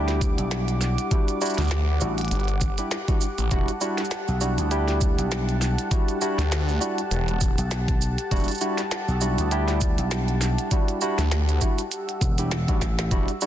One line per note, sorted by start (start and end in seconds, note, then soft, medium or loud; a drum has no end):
0.00 0.36 D2 medium
0.00 1.08 G3 loud
0.00 1.08 D4 medium
0.00 1.08 E4 medium
0.00 1.08 G4 loud
0.00 13.46 G4 medium
0.00 13.46 F#5 medium
0.00 3.51 D6 loud
0.08 snare soft
0.08 closed hi-hat soft
0.08 shaker soft
0.21 kick loud
0.21 shaker medium
0.38 0.96 B1 medium
0.38 closed hi-hat medium
0.38 shaker soft
0.51 snare loud
0.51 closed hi-hat medium
0.51 shaker soft
0.68 closed hi-hat soft
0.68 shaker soft
0.81 snare soft
0.81 shaker medium
0.98 closed hi-hat medium
0.98 shaker soft
1.11 1.38 G3 medium
1.11 1.38 D4 medium
1.11 1.38 E4 medium
1.11 1.38 F#4 medium
1.11 kick loud
1.11 closed hi-hat medium
1.11 shaker soft
1.28 closed hi-hat soft
1.28 shaker soft
1.41 1.60 G3 medium
1.41 1.60 D4 medium
1.41 1.60 E4 medium
1.41 1.60 F#4 loud
1.41 shaker medium
1.46 shaker medium
1.50 shaker soft
1.54 snare soft
1.54 closed hi-hat soft
1.54 shaker soft
1.58 1.99 D2 loud
1.58 shaker soft
1.61 shaker soft
1.65 shaker soft
1.68 snare loud
1.68 closed hi-hat medium
1.68 shaker soft
2.01 2.29 A1 medium
2.01 2.20 G3 medium
2.01 2.20 D4 medium
2.01 2.20 E4 medium
2.01 2.20 F#4 loud
2.01 shaker medium
2.18 closed hi-hat soft
2.18 shaker soft
2.21 closed hi-hat soft
2.25 closed hi-hat soft
2.28 2.76 G1 loud
2.28 closed hi-hat soft
2.31 closed hi-hat medium
2.31 shaker soft
2.35 closed hi-hat soft
2.40 closed hi-hat soft
2.44 closed hi-hat soft
2.48 closed hi-hat soft
2.48 shaker soft
2.61 kick loud
2.61 shaker medium
2.78 2.94 G3 medium
2.78 2.94 D4 medium
2.78 2.94 E4 medium
2.78 2.94 G4 medium
2.78 closed hi-hat medium
2.78 shaker soft
2.91 snare loud
2.91 closed hi-hat medium
2.91 shaker soft
3.08 3.24 G3 medium
3.08 3.24 D4 medium
3.08 3.24 E4 medium
3.08 3.24 F#4 medium
3.08 kick loud
3.08 closed hi-hat soft
3.08 shaker soft
3.21 shaker medium
3.38 3.49 A1 medium
3.38 closed hi-hat soft
3.38 shaker soft
3.51 3.66 E1 medium
3.51 3.70 G3 loud
3.51 3.70 D4 medium
3.51 3.70 E4 medium
3.51 3.70 F#4 loud
3.51 11.91 A5 loud
3.51 kick loud
3.51 closed hi-hat medium
3.51 shaker soft
3.68 closed hi-hat soft
3.68 shaker soft
3.81 4.00 G3 loud
3.81 4.00 D4 medium
3.81 4.00 E4 medium
3.81 4.00 F#4 loud
3.81 shaker medium
3.98 snare soft
3.98 closed hi-hat soft
4.05 shaker soft
4.11 snare loud
4.11 closed hi-hat medium
4.11 shaker soft
4.28 4.56 B1 medium
4.28 shaker soft
4.41 4.67 G3 medium
4.41 4.67 D4 medium
4.41 4.67 E4 medium
4.41 4.67 F#4 loud
4.41 shaker medium
4.58 5.16 D2 loud
4.58 closed hi-hat soft
4.58 shaker soft
4.71 5.88 G3 medium
4.71 5.88 D4 medium
4.71 5.88 E4 medium
4.71 5.88 G4 loud
4.71 closed hi-hat medium
4.71 shaker soft
4.88 snare soft
4.88 closed hi-hat soft
4.88 shaker soft
5.01 kick loud
5.01 shaker medium
5.18 5.76 B1 loud
5.18 closed hi-hat medium
5.18 shaker soft
5.32 snare loud
5.32 closed hi-hat medium
5.32 shaker soft
5.49 closed hi-hat soft
5.49 shaker soft
5.62 snare medium
5.62 shaker medium
5.79 closed hi-hat soft
5.79 shaker soft
5.91 6.18 G3 medium
5.91 6.18 D4 medium
5.91 6.18 E4 medium
5.91 6.18 F#4 medium
5.91 kick loud
5.91 closed hi-hat medium
5.91 shaker soft
6.09 closed hi-hat soft
6.09 shaker soft
6.21 6.40 G3 medium
6.21 6.40 D4 medium
6.21 6.40 E4 medium
6.21 6.40 F#4 loud
6.21 shaker medium
6.38 6.79 D2 loud
6.38 snare soft
6.38 closed hi-hat soft
6.38 shaker soft
6.52 snare loud
6.52 closed hi-hat medium
6.52 shaker soft
6.69 shaker soft
6.81 7.00 G3 medium
6.81 7.00 D4 medium
6.81 7.00 E4 medium
6.81 7.00 F#4 loud
6.81 shaker medium
6.98 closed hi-hat soft
6.98 shaker soft
7.11 7.55 E1 medium
7.11 closed hi-hat medium
7.11 shaker soft
7.28 closed hi-hat soft
7.28 shaker soft
7.41 kick loud
7.41 shaker medium
7.58 8.16 B1 loud
7.58 closed hi-hat medium
7.58 shaker soft
7.71 snare loud
7.71 closed hi-hat medium
7.71 shaker soft
7.88 kick loud
7.88 closed hi-hat soft
7.88 shaker soft
8.01 shaker medium
8.18 closed hi-hat soft
8.18 shaker soft
8.31 8.46 E1 medium
8.31 8.50 G3 medium
8.31 8.50 D4 medium
8.31 8.50 E4 medium
8.31 8.50 F#4 loud
8.31 kick loud
8.31 closed hi-hat medium
8.31 shaker soft
8.36 shaker soft
8.40 shaker soft
8.44 shaker soft
8.48 closed hi-hat soft
8.48 shaker soft
8.51 shaker soft
8.55 shaker soft
8.58 shaker soft
8.61 8.80 G3 medium
8.61 8.80 D4 medium
8.61 8.80 E4 medium
8.61 8.80 F#4 loud
8.61 shaker medium
8.78 snare soft
8.78 closed hi-hat medium
8.78 shaker soft
8.91 snare loud
8.91 closed hi-hat medium
8.91 shaker soft
9.08 9.36 B1 loud
9.08 shaker soft
9.21 9.47 G3 medium
9.21 9.47 D4 medium
9.21 9.47 E4 medium
9.21 9.48 F#4 loud
9.21 shaker medium
9.38 9.96 D2 loud
9.38 closed hi-hat soft
9.38 shaker soft
9.51 10.68 G3 medium
9.51 10.68 D4 medium
9.51 10.68 E4 medium
9.51 10.68 G4 loud
9.51 closed hi-hat medium
9.51 shaker soft
9.68 snare soft
9.68 closed hi-hat soft
9.68 shaker soft
9.81 kick loud
9.81 shaker medium
9.98 10.56 B1 loud
9.98 closed hi-hat medium
9.98 shaker soft
10.11 snare loud
10.11 closed hi-hat medium
10.11 shaker soft
10.28 closed hi-hat soft
10.28 shaker soft
10.41 snare medium
10.41 shaker medium
10.58 closed hi-hat soft
10.58 shaker soft
10.71 10.98 G3 medium
10.71 10.98 D4 medium
10.71 10.99 E4 medium
10.71 10.99 F#4 medium
10.71 kick loud
10.71 closed hi-hat medium
10.71 shaker soft
10.88 closed hi-hat soft
10.88 shaker soft
11.01 11.21 G3 medium
11.01 11.20 D4 medium
11.01 11.21 E4 medium
11.01 11.20 F#4 loud
11.01 shaker medium
11.18 11.59 D2 loud
11.18 snare soft
11.18 closed hi-hat medium
11.18 shaker soft
11.31 snare loud
11.31 closed hi-hat medium
11.31 shaker soft
11.49 closed hi-hat soft
11.49 shaker soft
11.61 11.80 G3 medium
11.61 11.80 D4 medium
11.61 11.80 E4 medium
11.61 11.80 F#4 loud
11.61 kick medium
11.61 shaker medium
11.79 closed hi-hat medium
11.79 shaker soft
11.92 13.46 E6 medium
11.92 closed hi-hat medium
11.92 shaker soft
12.09 closed hi-hat soft
12.09 shaker soft
12.21 12.66 E1 medium
12.21 kick loud
12.21 shaker medium
12.38 12.54 G3 medium
12.38 12.54 D4 medium
12.38 12.54 E4 medium
12.38 12.54 G4 medium
12.38 closed hi-hat medium
12.38 shaker soft
12.51 snare loud
12.51 closed hi-hat medium
12.51 shaker soft
12.68 13.09 A1 loud
12.68 12.84 G3 medium
12.68 12.84 D4 medium
12.68 12.84 E4 medium
12.68 12.84 F#4 medium
12.68 kick loud
12.68 closed hi-hat soft
12.68 shaker soft
12.81 kick medium
12.81 snare medium
12.81 shaker medium
12.99 snare medium
12.99 closed hi-hat soft
12.99 shaker soft
13.11 13.26 E1 loud
13.11 13.31 G3 loud
13.11 13.30 D4 medium
13.11 13.30 E4 medium
13.11 13.30 F#4 loud
13.11 kick loud
13.11 closed hi-hat medium
13.11 shaker soft
13.28 closed hi-hat soft
13.28 shaker soft
13.41 13.46 G3 loud
13.41 13.46 D4 medium
13.41 13.46 E4 medium
13.41 13.46 F#4 loud
13.41 shaker medium